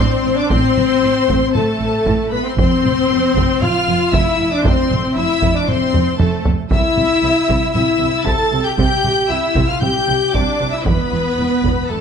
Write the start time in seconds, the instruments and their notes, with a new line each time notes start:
Already playing: violin section C5 C6, flute C5
0.00 viola section C4, french horn section C4
0.24 double bass section A1, cello section A2
0.36 viola section D4, french horn section D4, violin section D5 D6, flute D5
0.49 double bass section A1, cello section A2, viola section C4, french horn section C4, violin section C5 C6, flute C5, taiko
0.77 double bass section A1, cello section A2, taiko mid
1.03 double bass section A1, cello section A2
1.28 double bass section A1, cello section A2, taiko
1.53 double bass section A1, cello section A2, viola section A3, french horn section A3, violin section A4 A5, flute A4, taiko mid
1.80 double bass section A1, cello section A2
2.06 double bass section A1, cello section A2, taiko
2.31 double bass section A1, cello section A2, french horn section B3, viola section B3, violin section B4 B5, flute B4
2.45 viola section C4, french horn section C4, flute C5, violin section C5 C6
2.57 double bass section F1, cello section F2, viola section C4, french horn section C4, violin section C5 C6, flute C5, taiko
2.84 double bass section F1, cello section F2, taiko mid
3.09 double bass section F1, cello section F2
3.34 double bass section F1, cello section F2, taiko
3.60 double bass section F1, cello section F2, french horn section F4, viola section F4, violin section F5 F6, flute F5, taiko mid
3.87 double bass section F1, cello section F2
4.12 double bass section F1, cello section F2, french horn section E4, viola section E4, violin section E5 E6, flute E5, taiko
4.39 double bass section F1, cello section F2
4.51 french horn section D4, viola section D4, violin section D5 D6, flute D5
4.64 double bass section F1, cello section F2, french horn section C4, viola section C4, violin section C5 C6, flute C5, taiko
4.91 double bass section F1, cello section F2, taiko mid
5.15 double bass section F1, cello section F2, viola section E4, french horn section E4, violin section E5 E6, flute E5
5.42 double bass section F1, cello section F2, taiko
5.55 french horn section D4, viola section D4, flute D5, violin section D5 D6
5.67 double bass section F1, cello section F2, french horn section C4, viola section C4, violin section C5 C6, flute C5, taiko mid
5.94 double bass section F1, cello section F2, taiko low-mid
6.20 double bass section F1, cello section F2, viola section A3, french horn section A3, flute A4, violin section A4 A5, taiko low-mid
6.45 double bass section F1, cello section F2, taiko low
6.71 double bass section C2, cello section C3, french horn section E4, viola section E4, violin section E5 E6, flute E5, taiko
6.96 double bass section C2, cello section C3, taiko mid
7.22 double bass section C2, cello section C3
7.48 double bass section C2, cello section C3, taiko
7.72 double bass section C2, cello section C3, viola section E4, french horn section E4, violin section E5 E6, flute E5, taiko mid
7.99 double bass section C2, cello section C3
8.23 double bass section C2, cello section C3, viola section A4, violin section A5 A6, flute A5, taiko
8.28 french horn section A4
8.52 double bass section C2, cello section C3
8.65 viola section G4, french horn section G4, violin section G5 G6, flute G5
8.77 double bass section C2, cello section C3, viola section G4, violin section G5 G6, flute G5, taiko
8.81 french horn section G4
9.04 double bass section C2, cello section C3, taiko mid
9.29 double bass section C2, cello section C3, viola section E4, french horn section E4, violin section E5 E6, flute E5
9.55 double bass section C2, cello section C3, taiko
9.68 french horn section F4, viola section F4, violin section F5 F6, flute F5
9.81 double bass section C2, cello section C3, french horn section G4, viola section G4, violin section G5 G6, flute G5, taiko mid
10.07 double bass section C2, cello section C3
10.32 double bass section C2, cello section C3, french horn section D4, viola section D4, violin section D5 D6, flute D5, taiko
10.60 double bass section C2, cello section C3
10.72 french horn section E4, viola section E4, violin section E5 E6, flute E5
10.83 double bass section E1, cello section E2, viola section B3, french horn section B3, violin section B4 B5, flute B4, taiko
11.02 timpani E2
11.10 double bass section E1, timpani E2, cello section E2
11.24 timpani E2
11.32 timpani E2
11.38 double bass section E1, cello section E2, timpani E2
11.47 timpani E2
11.55 timpani E2
11.62 double bass section E1, timpani E2, cello section E2, taiko
11.76 timpani E2
11.83 timpani E2
11.89 double bass section E1, timpani E2, cello section E2, french horn section A3, viola section A3, violin section A4 A5, flute A4